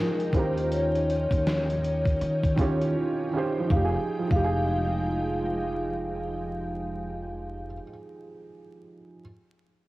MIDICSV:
0, 0, Header, 1, 6, 480
1, 0, Start_track
1, 0, Key_signature, -4, "minor"
1, 0, Tempo, 750000
1, 449, Time_signature, 4, 2, 24, 8
1, 6323, End_track
2, 0, Start_track
2, 0, Title_t, "Vibraphone"
2, 0, Program_c, 0, 11
2, 0, Note_on_c, 0, 70, 91
2, 222, Note_on_c, 0, 72, 99
2, 226, Note_off_c, 0, 70, 0
2, 459, Note_on_c, 0, 73, 92
2, 463, Note_off_c, 0, 72, 0
2, 1868, Note_off_c, 0, 73, 0
2, 2377, Note_on_c, 0, 77, 81
2, 2529, Note_off_c, 0, 77, 0
2, 2764, Note_on_c, 0, 77, 92
2, 4977, Note_off_c, 0, 77, 0
2, 6323, End_track
3, 0, Start_track
3, 0, Title_t, "Felt piano"
3, 0, Program_c, 1, 0
3, 0, Control_c, 1, 64, 127
3, 0, Note_on_c, 1, 53, 73
3, 0, Note_on_c, 1, 63, 71
3, 0, Note_on_c, 1, 67, 59
3, 0, Note_on_c, 1, 68, 87
3, 165, Note_off_c, 1, 53, 0
3, 172, Note_off_c, 1, 63, 0
3, 179, Note_off_c, 1, 67, 0
3, 186, Note_off_c, 1, 68, 0
3, 207, Note_on_c, 1, 51, 63
3, 216, Control_c, 1, 64, 0
3, 219, Note_on_c, 1, 61, 66
3, 228, Note_on_c, 1, 65, 70
3, 237, Note_on_c, 1, 67, 69
3, 248, Note_on_c, 1, 70, 89
3, 312, Control_c, 1, 64, 127
3, 1088, Note_off_c, 1, 51, 0
3, 1093, Note_off_c, 1, 61, 0
3, 1098, Note_off_c, 1, 65, 0
3, 1102, Note_off_c, 1, 67, 0
3, 1108, Note_off_c, 1, 70, 0
3, 1639, Note_on_c, 1, 51, 89
3, 1648, Note_on_c, 1, 61, 81
3, 1658, Note_on_c, 1, 65, 75
3, 1670, Note_on_c, 1, 67, 77
3, 1680, Note_on_c, 1, 73, 87
3, 2084, Note_off_c, 1, 51, 0
3, 2088, Note_off_c, 1, 61, 0
3, 2093, Note_off_c, 1, 65, 0
3, 2099, Note_off_c, 1, 67, 0
3, 2104, Note_off_c, 1, 73, 0
3, 2122, Note_on_c, 1, 51, 80
3, 2134, Note_on_c, 1, 61, 73
3, 2143, Note_on_c, 1, 65, 69
3, 2154, Note_on_c, 1, 67, 73
3, 2165, Note_on_c, 1, 72, 86
3, 2298, Note_on_c, 1, 53, 84
3, 2345, Note_off_c, 1, 51, 0
3, 2351, Note_off_c, 1, 61, 0
3, 2352, Note_on_c, 1, 63, 78
3, 2356, Note_off_c, 1, 65, 0
3, 2361, Note_off_c, 1, 67, 0
3, 2367, Note_off_c, 1, 72, 0
3, 2379, Control_c, 1, 64, 0
3, 2405, Note_on_c, 1, 67, 73
3, 2461, Note_on_c, 1, 68, 86
3, 2486, Note_off_c, 1, 53, 0
3, 2490, Control_c, 1, 64, 127
3, 2515, Note_off_c, 1, 63, 0
3, 2544, Note_off_c, 1, 67, 0
3, 2574, Note_off_c, 1, 68, 0
3, 2683, Note_on_c, 1, 53, 75
3, 2737, Note_on_c, 1, 63, 69
3, 2790, Note_on_c, 1, 67, 70
3, 2845, Note_on_c, 1, 68, 83
3, 4896, Note_off_c, 1, 53, 0
3, 4949, Note_off_c, 1, 63, 0
3, 5002, Note_off_c, 1, 67, 0
3, 5057, Note_off_c, 1, 68, 0
3, 5897, Control_c, 1, 64, 0
3, 6323, End_track
4, 0, Start_track
4, 0, Title_t, "String machine"
4, 0, Program_c, 2, 50
4, 0, Note_on_c, 2, 53, 74
4, 0, Note_on_c, 2, 56, 83
4, 0, Note_on_c, 2, 63, 68
4, 0, Note_on_c, 2, 79, 77
4, 192, Note_off_c, 2, 53, 0
4, 192, Note_off_c, 2, 56, 0
4, 213, Note_on_c, 2, 61, 71
4, 2344, Note_off_c, 2, 63, 0
4, 2344, Note_off_c, 2, 79, 0
4, 2350, Note_off_c, 2, 61, 0
4, 2366, Note_on_c, 2, 56, 85
4, 2366, Note_on_c, 2, 79, 66
4, 2367, Note_on_c, 2, 63, 70
4, 2368, Note_on_c, 2, 53, 75
4, 4578, Note_off_c, 2, 79, 0
4, 4579, Note_off_c, 2, 56, 0
4, 4580, Note_off_c, 2, 53, 0
4, 4580, Note_off_c, 2, 63, 0
4, 6323, End_track
5, 0, Start_track
5, 0, Title_t, "Upright bass"
5, 0, Program_c, 3, 32
5, 214, Note_on_c, 3, 39, 97
5, 815, Note_off_c, 3, 39, 0
5, 839, Note_on_c, 3, 39, 98
5, 1384, Note_off_c, 3, 39, 0
5, 1416, Note_on_c, 3, 51, 107
5, 1637, Note_off_c, 3, 51, 0
5, 1653, Note_on_c, 3, 39, 84
5, 1875, Note_off_c, 3, 39, 0
5, 2372, Note_on_c, 3, 29, 98
5, 2526, Note_off_c, 3, 29, 0
5, 2760, Note_on_c, 3, 29, 88
5, 4972, Note_off_c, 3, 29, 0
5, 6323, End_track
6, 0, Start_track
6, 0, Title_t, "Drums"
6, 128, Note_on_c, 9, 42, 44
6, 192, Note_off_c, 9, 42, 0
6, 211, Note_on_c, 9, 36, 99
6, 221, Note_on_c, 9, 42, 68
6, 275, Note_off_c, 9, 36, 0
6, 285, Note_off_c, 9, 42, 0
6, 368, Note_on_c, 9, 42, 54
6, 432, Note_off_c, 9, 42, 0
6, 459, Note_on_c, 9, 42, 83
6, 523, Note_off_c, 9, 42, 0
6, 609, Note_on_c, 9, 42, 46
6, 673, Note_off_c, 9, 42, 0
6, 702, Note_on_c, 9, 42, 70
6, 766, Note_off_c, 9, 42, 0
6, 837, Note_on_c, 9, 36, 90
6, 845, Note_on_c, 9, 42, 56
6, 901, Note_off_c, 9, 36, 0
6, 909, Note_off_c, 9, 42, 0
6, 939, Note_on_c, 9, 42, 87
6, 940, Note_on_c, 9, 38, 121
6, 1003, Note_off_c, 9, 42, 0
6, 1004, Note_off_c, 9, 38, 0
6, 1087, Note_on_c, 9, 42, 46
6, 1151, Note_off_c, 9, 42, 0
6, 1179, Note_on_c, 9, 42, 65
6, 1243, Note_off_c, 9, 42, 0
6, 1314, Note_on_c, 9, 36, 89
6, 1325, Note_on_c, 9, 42, 43
6, 1378, Note_off_c, 9, 36, 0
6, 1389, Note_off_c, 9, 42, 0
6, 1416, Note_on_c, 9, 42, 71
6, 1480, Note_off_c, 9, 42, 0
6, 1559, Note_on_c, 9, 36, 89
6, 1567, Note_on_c, 9, 42, 53
6, 1623, Note_off_c, 9, 36, 0
6, 1631, Note_off_c, 9, 42, 0
6, 1649, Note_on_c, 9, 36, 96
6, 1656, Note_on_c, 9, 42, 68
6, 1713, Note_off_c, 9, 36, 0
6, 1720, Note_off_c, 9, 42, 0
6, 1802, Note_on_c, 9, 42, 48
6, 1866, Note_off_c, 9, 42, 0
6, 2369, Note_on_c, 9, 36, 102
6, 2433, Note_off_c, 9, 36, 0
6, 2758, Note_on_c, 9, 36, 104
6, 2822, Note_off_c, 9, 36, 0
6, 6323, End_track
0, 0, End_of_file